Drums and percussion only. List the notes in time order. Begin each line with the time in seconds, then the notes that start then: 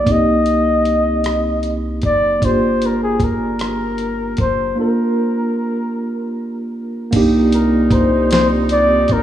0.07 kick, closed hi-hat
0.46 closed hi-hat
0.85 closed hi-hat
1.24 cross-stick, closed hi-hat
1.63 closed hi-hat
2.02 kick, closed hi-hat
2.42 kick, closed hi-hat
2.82 closed hi-hat
3.20 kick, closed hi-hat
3.59 cross-stick, closed hi-hat
3.98 closed hi-hat
4.37 kick, closed hi-hat
7.12 kick, closed hi-hat, crash
7.53 closed hi-hat
7.91 kick, closed hi-hat
8.31 snare, closed hi-hat
8.69 closed hi-hat
9.08 kick, closed hi-hat